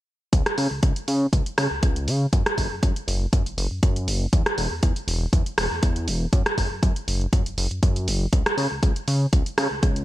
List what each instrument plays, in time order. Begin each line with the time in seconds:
0.33 analog synth bass C#2, kick, closed hi-hat
0.46 cross-stick, closed hi-hat
0.58 analog synth bass C#3, open hi-hat
0.71 analog synth bass C#2
0.83 analog synth bass C#2, kick, closed hi-hat
0.96 closed hi-hat
1.08 analog synth bass C#3, open hi-hat
1.33 analog synth bass C#2, kick, closed hi-hat
1.46 closed hi-hat
1.58 analog synth bass C#3, cross-stick, open hi-hat
1.71 analog synth bass C#2
1.83 analog synth bass C#2, kick, closed hi-hat
1.96 closed hi-hat
2.08 analog synth bass C#3, open hi-hat
2.33 analog synth bass F#2, kick, closed hi-hat
2.46 cross-stick, closed hi-hat
2.58 analog synth bass F#1, kick, open hi-hat
2.71 analog synth bass F#2
2.83 analog synth bass F#2, kick, closed hi-hat
2.96 closed hi-hat
3.08 analog synth bass F#1, open hi-hat
3.33 analog synth bass F#2, kick, closed hi-hat
3.46 analog synth bass F#1, closed hi-hat
3.58 analog synth bass F#1, open hi-hat
3.71 analog synth bass F#2
3.83 analog synth bass F#2, kick, closed hi-hat
3.96 closed hi-hat
4.08 analog synth bass F#1, open hi-hat
4.33 analog synth bass E2, kick, closed hi-hat
4.46 cross-stick, closed hi-hat
4.58 analog synth bass E1, open hi-hat
4.71 analog synth bass E2
4.83 analog synth bass E2, kick, closed hi-hat
4.96 closed hi-hat
5.08 analog synth bass E1, open hi-hat
5.33 analog synth bass E2, kick, closed hi-hat
5.46 closed hi-hat
5.58 analog synth bass E1, cross-stick, open hi-hat
5.71 analog synth bass E2
5.83 analog synth bass E2, kick, closed hi-hat
5.96 closed hi-hat
6.08 analog synth bass E1, open hi-hat
6.33 analog synth bass F#2, kick, closed hi-hat
6.46 cross-stick, closed hi-hat
6.58 analog synth bass F#1, kick, open hi-hat
6.71 analog synth bass F#2
6.83 analog synth bass F#2, kick, closed hi-hat
6.96 closed hi-hat
7.08 analog synth bass F#1, open hi-hat
7.21 closed hi-hat
7.33 analog synth bass F#2, kick, closed hi-hat
7.46 analog synth bass F#1, closed hi-hat
7.58 analog synth bass F#1, open hi-hat
7.71 analog synth bass F#2, closed hi-hat
7.83 analog synth bass F#2, kick, closed hi-hat
7.96 closed hi-hat
8.08 analog synth bass F#1, open hi-hat
8.33 analog synth bass C#2, kick, closed hi-hat
8.46 cross-stick, closed hi-hat
8.57 analog synth bass C#3, open hi-hat
8.71 analog synth bass C#2
8.83 analog synth bass C#2, kick, closed hi-hat
8.96 closed hi-hat
9.08 analog synth bass C#3, open hi-hat
9.33 analog synth bass C#2, kick, closed hi-hat
9.46 closed hi-hat
9.58 analog synth bass C#3, cross-stick, open hi-hat
9.71 analog synth bass C#2
9.83 analog synth bass C#2, kick, closed hi-hat
9.96 closed hi-hat